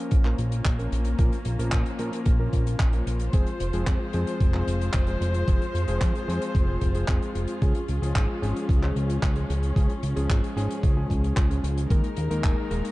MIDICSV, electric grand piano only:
0, 0, Header, 1, 2, 480
1, 0, Start_track
1, 0, Key_signature, -4, "minor"
1, 0, Tempo, 535714
1, 1066, Time_signature, 4, 2, 24, 8
1, 11572, End_track
2, 0, Start_track
2, 0, Title_t, "Electric grand piano"
2, 0, Program_c, 0, 2
2, 0, Note_on_c, 0, 53, 95
2, 0, Note_on_c, 0, 58, 84
2, 0, Note_on_c, 0, 61, 85
2, 0, Note_on_c, 0, 70, 100
2, 197, Note_off_c, 0, 53, 0
2, 197, Note_off_c, 0, 58, 0
2, 197, Note_off_c, 0, 61, 0
2, 197, Note_off_c, 0, 70, 0
2, 227, Note_on_c, 0, 53, 75
2, 227, Note_on_c, 0, 58, 68
2, 227, Note_on_c, 0, 61, 68
2, 227, Note_on_c, 0, 70, 83
2, 678, Note_off_c, 0, 53, 0
2, 678, Note_off_c, 0, 58, 0
2, 678, Note_off_c, 0, 61, 0
2, 678, Note_off_c, 0, 70, 0
2, 705, Note_on_c, 0, 61, 67
2, 705, Note_on_c, 0, 70, 80
2, 706, Note_on_c, 0, 53, 71
2, 706, Note_on_c, 0, 58, 63
2, 1037, Note_off_c, 0, 53, 0
2, 1037, Note_off_c, 0, 58, 0
2, 1037, Note_off_c, 0, 61, 0
2, 1037, Note_off_c, 0, 70, 0
2, 1065, Note_on_c, 0, 58, 75
2, 1066, Note_on_c, 0, 53, 79
2, 1066, Note_on_c, 0, 61, 70
2, 1066, Note_on_c, 0, 70, 93
2, 1202, Note_off_c, 0, 53, 0
2, 1202, Note_off_c, 0, 58, 0
2, 1203, Note_off_c, 0, 61, 0
2, 1203, Note_off_c, 0, 70, 0
2, 1425, Note_on_c, 0, 53, 91
2, 1425, Note_on_c, 0, 58, 78
2, 1426, Note_on_c, 0, 61, 85
2, 1426, Note_on_c, 0, 70, 101
2, 1757, Note_off_c, 0, 53, 0
2, 1757, Note_off_c, 0, 58, 0
2, 1757, Note_off_c, 0, 61, 0
2, 1757, Note_off_c, 0, 70, 0
2, 1786, Note_on_c, 0, 53, 94
2, 1787, Note_on_c, 0, 58, 88
2, 1787, Note_on_c, 0, 61, 81
2, 1787, Note_on_c, 0, 70, 104
2, 2118, Note_off_c, 0, 53, 0
2, 2118, Note_off_c, 0, 58, 0
2, 2118, Note_off_c, 0, 61, 0
2, 2118, Note_off_c, 0, 70, 0
2, 2147, Note_on_c, 0, 53, 75
2, 2147, Note_on_c, 0, 58, 70
2, 2147, Note_on_c, 0, 61, 72
2, 2147, Note_on_c, 0, 70, 88
2, 2598, Note_off_c, 0, 53, 0
2, 2598, Note_off_c, 0, 58, 0
2, 2598, Note_off_c, 0, 61, 0
2, 2598, Note_off_c, 0, 70, 0
2, 2628, Note_on_c, 0, 53, 73
2, 2628, Note_on_c, 0, 58, 65
2, 2628, Note_on_c, 0, 61, 69
2, 2628, Note_on_c, 0, 70, 80
2, 2958, Note_off_c, 0, 53, 0
2, 2958, Note_off_c, 0, 58, 0
2, 2958, Note_off_c, 0, 61, 0
2, 2958, Note_off_c, 0, 70, 0
2, 2989, Note_on_c, 0, 53, 84
2, 2989, Note_on_c, 0, 56, 74
2, 2989, Note_on_c, 0, 60, 76
2, 2989, Note_on_c, 0, 68, 90
2, 3124, Note_off_c, 0, 53, 0
2, 3124, Note_off_c, 0, 56, 0
2, 3124, Note_off_c, 0, 60, 0
2, 3124, Note_off_c, 0, 68, 0
2, 3347, Note_on_c, 0, 53, 91
2, 3347, Note_on_c, 0, 68, 101
2, 3348, Note_on_c, 0, 56, 80
2, 3348, Note_on_c, 0, 60, 81
2, 3678, Note_off_c, 0, 53, 0
2, 3678, Note_off_c, 0, 56, 0
2, 3678, Note_off_c, 0, 60, 0
2, 3678, Note_off_c, 0, 68, 0
2, 3707, Note_on_c, 0, 60, 87
2, 3707, Note_on_c, 0, 68, 105
2, 3708, Note_on_c, 0, 53, 96
2, 3708, Note_on_c, 0, 56, 84
2, 4038, Note_off_c, 0, 53, 0
2, 4038, Note_off_c, 0, 56, 0
2, 4038, Note_off_c, 0, 60, 0
2, 4038, Note_off_c, 0, 68, 0
2, 4067, Note_on_c, 0, 53, 77
2, 4067, Note_on_c, 0, 56, 71
2, 4067, Note_on_c, 0, 60, 74
2, 4068, Note_on_c, 0, 68, 88
2, 4518, Note_off_c, 0, 53, 0
2, 4518, Note_off_c, 0, 56, 0
2, 4518, Note_off_c, 0, 60, 0
2, 4518, Note_off_c, 0, 68, 0
2, 4548, Note_on_c, 0, 53, 71
2, 4548, Note_on_c, 0, 56, 67
2, 4548, Note_on_c, 0, 60, 67
2, 4548, Note_on_c, 0, 68, 77
2, 4878, Note_off_c, 0, 53, 0
2, 4878, Note_off_c, 0, 56, 0
2, 4878, Note_off_c, 0, 60, 0
2, 4878, Note_off_c, 0, 68, 0
2, 4908, Note_on_c, 0, 53, 80
2, 4909, Note_on_c, 0, 56, 76
2, 4909, Note_on_c, 0, 60, 72
2, 4909, Note_on_c, 0, 68, 87
2, 5044, Note_off_c, 0, 53, 0
2, 5044, Note_off_c, 0, 56, 0
2, 5044, Note_off_c, 0, 60, 0
2, 5044, Note_off_c, 0, 68, 0
2, 5266, Note_on_c, 0, 53, 89
2, 5267, Note_on_c, 0, 56, 84
2, 5267, Note_on_c, 0, 60, 83
2, 5267, Note_on_c, 0, 68, 101
2, 5597, Note_off_c, 0, 53, 0
2, 5598, Note_off_c, 0, 56, 0
2, 5598, Note_off_c, 0, 60, 0
2, 5598, Note_off_c, 0, 68, 0
2, 5627, Note_on_c, 0, 53, 89
2, 5627, Note_on_c, 0, 56, 80
2, 5627, Note_on_c, 0, 60, 88
2, 5627, Note_on_c, 0, 68, 100
2, 5958, Note_off_c, 0, 53, 0
2, 5958, Note_off_c, 0, 56, 0
2, 5958, Note_off_c, 0, 60, 0
2, 5958, Note_off_c, 0, 68, 0
2, 5988, Note_on_c, 0, 53, 75
2, 5988, Note_on_c, 0, 56, 66
2, 5988, Note_on_c, 0, 60, 73
2, 5988, Note_on_c, 0, 68, 82
2, 6203, Note_off_c, 0, 53, 0
2, 6203, Note_off_c, 0, 56, 0
2, 6203, Note_off_c, 0, 60, 0
2, 6203, Note_off_c, 0, 68, 0
2, 6228, Note_on_c, 0, 56, 67
2, 6228, Note_on_c, 0, 60, 66
2, 6228, Note_on_c, 0, 68, 82
2, 6229, Note_on_c, 0, 53, 74
2, 6329, Note_off_c, 0, 53, 0
2, 6329, Note_off_c, 0, 56, 0
2, 6329, Note_off_c, 0, 60, 0
2, 6329, Note_off_c, 0, 68, 0
2, 6348, Note_on_c, 0, 60, 75
2, 6349, Note_on_c, 0, 53, 82
2, 6349, Note_on_c, 0, 56, 80
2, 6349, Note_on_c, 0, 68, 92
2, 6798, Note_off_c, 0, 60, 0
2, 6799, Note_off_c, 0, 53, 0
2, 6799, Note_off_c, 0, 56, 0
2, 6799, Note_off_c, 0, 68, 0
2, 6827, Note_on_c, 0, 53, 76
2, 6827, Note_on_c, 0, 56, 73
2, 6827, Note_on_c, 0, 61, 74
2, 6827, Note_on_c, 0, 68, 89
2, 6963, Note_off_c, 0, 53, 0
2, 6963, Note_off_c, 0, 56, 0
2, 6963, Note_off_c, 0, 61, 0
2, 6963, Note_off_c, 0, 68, 0
2, 7186, Note_on_c, 0, 53, 86
2, 7187, Note_on_c, 0, 56, 80
2, 7187, Note_on_c, 0, 61, 81
2, 7187, Note_on_c, 0, 68, 98
2, 7517, Note_off_c, 0, 53, 0
2, 7518, Note_off_c, 0, 56, 0
2, 7518, Note_off_c, 0, 61, 0
2, 7518, Note_off_c, 0, 68, 0
2, 7547, Note_on_c, 0, 53, 90
2, 7547, Note_on_c, 0, 56, 82
2, 7547, Note_on_c, 0, 61, 87
2, 7547, Note_on_c, 0, 68, 101
2, 7878, Note_off_c, 0, 53, 0
2, 7878, Note_off_c, 0, 56, 0
2, 7878, Note_off_c, 0, 61, 0
2, 7878, Note_off_c, 0, 68, 0
2, 7906, Note_on_c, 0, 53, 78
2, 7906, Note_on_c, 0, 56, 72
2, 7906, Note_on_c, 0, 61, 73
2, 7906, Note_on_c, 0, 68, 82
2, 8357, Note_off_c, 0, 53, 0
2, 8357, Note_off_c, 0, 56, 0
2, 8357, Note_off_c, 0, 61, 0
2, 8357, Note_off_c, 0, 68, 0
2, 8388, Note_on_c, 0, 53, 73
2, 8388, Note_on_c, 0, 56, 66
2, 8388, Note_on_c, 0, 61, 66
2, 8388, Note_on_c, 0, 68, 75
2, 8718, Note_off_c, 0, 53, 0
2, 8718, Note_off_c, 0, 56, 0
2, 8718, Note_off_c, 0, 61, 0
2, 8718, Note_off_c, 0, 68, 0
2, 8747, Note_on_c, 0, 53, 82
2, 8747, Note_on_c, 0, 56, 78
2, 8747, Note_on_c, 0, 61, 74
2, 8747, Note_on_c, 0, 68, 90
2, 8883, Note_off_c, 0, 53, 0
2, 8883, Note_off_c, 0, 56, 0
2, 8883, Note_off_c, 0, 61, 0
2, 8883, Note_off_c, 0, 68, 0
2, 9106, Note_on_c, 0, 53, 88
2, 9106, Note_on_c, 0, 56, 83
2, 9106, Note_on_c, 0, 61, 79
2, 9106, Note_on_c, 0, 68, 103
2, 9437, Note_off_c, 0, 53, 0
2, 9437, Note_off_c, 0, 56, 0
2, 9437, Note_off_c, 0, 61, 0
2, 9437, Note_off_c, 0, 68, 0
2, 9467, Note_on_c, 0, 53, 92
2, 9468, Note_on_c, 0, 56, 87
2, 9468, Note_on_c, 0, 61, 84
2, 9468, Note_on_c, 0, 68, 104
2, 9798, Note_off_c, 0, 53, 0
2, 9798, Note_off_c, 0, 56, 0
2, 9798, Note_off_c, 0, 61, 0
2, 9798, Note_off_c, 0, 68, 0
2, 9827, Note_on_c, 0, 56, 69
2, 9828, Note_on_c, 0, 53, 79
2, 9828, Note_on_c, 0, 61, 72
2, 9828, Note_on_c, 0, 68, 85
2, 10278, Note_off_c, 0, 53, 0
2, 10278, Note_off_c, 0, 56, 0
2, 10278, Note_off_c, 0, 61, 0
2, 10278, Note_off_c, 0, 68, 0
2, 10306, Note_on_c, 0, 53, 72
2, 10306, Note_on_c, 0, 56, 68
2, 10307, Note_on_c, 0, 61, 68
2, 10307, Note_on_c, 0, 68, 77
2, 10637, Note_off_c, 0, 53, 0
2, 10637, Note_off_c, 0, 56, 0
2, 10638, Note_off_c, 0, 61, 0
2, 10638, Note_off_c, 0, 68, 0
2, 10666, Note_on_c, 0, 70, 91
2, 10667, Note_on_c, 0, 56, 84
2, 10667, Note_on_c, 0, 58, 75
2, 10667, Note_on_c, 0, 63, 75
2, 10803, Note_off_c, 0, 56, 0
2, 10803, Note_off_c, 0, 58, 0
2, 10803, Note_off_c, 0, 63, 0
2, 10803, Note_off_c, 0, 70, 0
2, 11027, Note_on_c, 0, 56, 88
2, 11027, Note_on_c, 0, 58, 81
2, 11027, Note_on_c, 0, 63, 85
2, 11027, Note_on_c, 0, 70, 101
2, 11358, Note_off_c, 0, 56, 0
2, 11358, Note_off_c, 0, 58, 0
2, 11358, Note_off_c, 0, 63, 0
2, 11358, Note_off_c, 0, 70, 0
2, 11386, Note_on_c, 0, 56, 93
2, 11386, Note_on_c, 0, 58, 88
2, 11386, Note_on_c, 0, 63, 87
2, 11386, Note_on_c, 0, 70, 102
2, 11572, Note_off_c, 0, 56, 0
2, 11572, Note_off_c, 0, 58, 0
2, 11572, Note_off_c, 0, 63, 0
2, 11572, Note_off_c, 0, 70, 0
2, 11572, End_track
0, 0, End_of_file